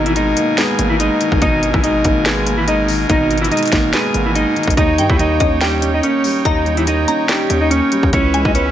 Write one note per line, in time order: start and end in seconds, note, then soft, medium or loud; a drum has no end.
0.00 0.34 G#1 loud
0.00 1.42 B2 loud
0.00 4.73 B2 medium
0.00 1.21 D#3 medium
0.00 0.16 G#3 medium
0.00 0.37 A#3 medium
0.00 0.58 B3 medium
0.00 4.73 A#4 medium
0.00 4.73 G#5 medium
0.06 0.16 E3 medium
0.06 0.15 E4 medium
0.06 closed hi-hat medium
0.16 0.98 G#3 medium
0.16 0.55 D#4 medium
0.16 0.56 D#5 medium
0.16 closed hi-hat medium
0.37 0.77 A#3 medium
0.37 closed hi-hat medium
0.58 0.88 G#3 medium
0.58 1.63 B3 loud
0.58 0.88 G#4 medium
0.58 snare loud
0.58 closed hi-hat medium
0.79 1.10 G#1 loud
0.79 1.84 A#3 medium
0.79 closed hi-hat loud
0.90 0.99 E3 medium
0.90 0.99 E4 medium
1.00 1.83 G#3 medium
1.00 1.39 D#4 medium
1.00 1.40 D#5 medium
1.00 closed hi-hat medium
1.21 1.61 D#3 medium
1.21 closed hi-hat medium
1.32 1.41 G#1 loud
1.32 kick medium
1.42 1.73 G#1 loud
1.42 2.47 B2 medium
1.42 1.72 D#4 loud
1.42 1.72 D#5 medium
1.42 kick loud
1.42 closed hi-hat medium
1.63 2.68 D#3 medium
1.63 closed hi-hat medium
1.74 2.03 G#1 loud
1.74 1.83 E3 medium
1.74 1.83 E4 medium
1.74 kick loud
1.83 2.66 G#3 medium
1.83 2.23 D#4 medium
1.83 2.23 D#5 medium
1.83 closed hi-hat medium
2.05 3.06 G#1 loud
2.05 2.45 A#3 medium
2.05 kick medium
2.05 closed hi-hat medium
2.25 2.56 G#3 medium
2.25 3.31 B3 medium
2.25 2.56 G#4 loud
2.25 snare loud
2.25 closed hi-hat medium
2.46 3.51 A#3 medium
2.46 closed hi-hat medium
2.58 2.67 E3 medium
2.58 2.67 E4 medium
2.68 3.50 G#3 medium
2.68 3.07 D#4 medium
2.68 3.08 D#5 medium
2.68 closed hi-hat medium
2.88 3.29 D#3 medium
2.88 open hi-hat medium
3.10 3.50 G#1 loud
3.10 4.14 B2 medium
3.10 3.40 D#4 loud
3.10 3.40 D#5 medium
3.10 kick loud
3.10 closed hi-hat medium
3.30 4.35 D#3 medium
3.30 closed hi-hat medium
3.38 closed hi-hat medium
3.42 3.51 E3 medium
3.42 3.51 E4 medium
3.42 closed hi-hat medium
3.51 4.34 G#3 medium
3.51 3.91 D#4 medium
3.51 3.91 D#5 medium
3.51 closed hi-hat medium
3.57 closed hi-hat medium
3.63 closed hi-hat medium
3.66 closed hi-hat medium
3.68 closed hi-hat medium
3.72 3.93 G#1 loud
3.72 4.13 A#3 medium
3.72 kick medium
3.72 snare medium
3.72 closed hi-hat medium
3.93 4.24 G#3 medium
3.93 4.77 B3 loud
3.93 4.24 G#4 medium
3.93 snare loud
3.93 closed hi-hat medium
4.14 4.45 G#1 loud
4.14 4.77 A#3 medium
4.14 closed hi-hat loud
4.26 4.35 E3 medium
4.26 4.35 E4 medium
4.35 4.77 G#3 medium
4.35 4.75 D#4 medium
4.35 4.75 D#5 medium
4.35 closed hi-hat medium
4.56 4.76 D#3 medium
4.56 closed hi-hat soft
4.63 closed hi-hat medium
4.67 4.77 G#1 loud
4.67 kick medium
4.67 closed hi-hat medium
4.77 5.00 D#2 loud
4.77 5.82 D#3 medium
4.77 5.07 D#4 loud
4.77 8.10 D#4 medium
4.77 8.10 C#5 medium
4.77 5.08 D#5 medium
4.77 8.10 G5 medium
4.77 kick loud
4.77 closed hi-hat medium
4.98 5.09 G2 loud
4.98 6.03 G3 medium
4.98 5.38 G5 medium
4.98 closed hi-hat medium
5.10 5.39 D#2 loud
5.10 5.19 E3 medium
5.10 5.19 E4 medium
5.10 kick loud
5.19 6.02 A#3 medium
5.19 5.59 D#4 medium
5.19 5.59 D#5 medium
5.19 closed hi-hat medium
5.40 6.01 D#2 loud
5.40 5.81 C#4 medium
5.40 5.60 D#5 medium
5.40 kick medium
5.40 closed hi-hat medium
5.61 5.92 G3 medium
5.61 6.66 D#4 medium
5.61 5.92 G4 medium
5.61 6.41 G5 medium
5.61 snare loud
5.61 closed hi-hat medium
5.82 6.87 C#4 loud
5.82 closed hi-hat medium
5.94 6.03 D#4 medium
5.94 6.03 D#5 medium
6.03 6.86 A#3 medium
6.03 6.43 C#4 medium
6.03 6.43 C#5 medium
6.03 closed hi-hat medium
6.24 6.64 G3 medium
6.24 open hi-hat medium
6.45 7.06 D#2 loud
6.45 7.50 D#3 medium
6.45 6.76 D#4 loud
6.45 6.76 D#5 medium
6.45 7.04 A#5 loud
6.45 kick loud
6.45 closed hi-hat medium
6.66 7.71 G3 medium
6.66 closed hi-hat soft
6.77 6.87 E3 medium
6.77 6.86 E4 medium
6.77 closed hi-hat medium
6.87 7.70 A#3 medium
6.87 7.27 D#4 medium
6.87 7.27 D#5 medium
6.87 closed hi-hat medium
7.08 7.49 C#4 medium
7.08 8.09 A#5 medium
7.08 closed hi-hat medium
7.29 7.60 G3 medium
7.29 8.13 D#4 medium
7.29 7.59 G4 medium
7.29 snare loud
7.29 closed hi-hat medium
7.50 7.81 D#2 loud
7.50 8.13 C#4 medium
7.50 closed hi-hat loud
7.61 7.70 D#4 medium
7.61 7.71 D#5 medium
7.71 8.13 A#3 medium
7.71 8.10 C#4 medium
7.71 8.11 C#5 medium
7.71 closed hi-hat medium
7.92 8.13 G3 medium
7.92 closed hi-hat medium
8.03 8.13 D#2 loud
8.03 kick medium
8.13 8.44 C#2 loud
8.13 8.71 E3 medium
8.13 8.71 C#4 medium
8.13 8.43 C#4 loud
8.13 8.71 B4 medium
8.13 8.44 C#5 medium
8.13 8.71 E5 medium
8.13 kick loud
8.13 closed hi-hat medium
8.34 8.71 G#3 medium
8.34 8.71 G#5 medium
8.34 closed hi-hat medium
8.45 8.71 C#2 loud
8.45 8.54 D#4 medium
8.45 8.55 D#5 medium
8.45 kick loud
8.54 8.71 B3 medium
8.54 8.71 C#4 medium
8.54 8.71 C#5 medium
8.54 closed hi-hat medium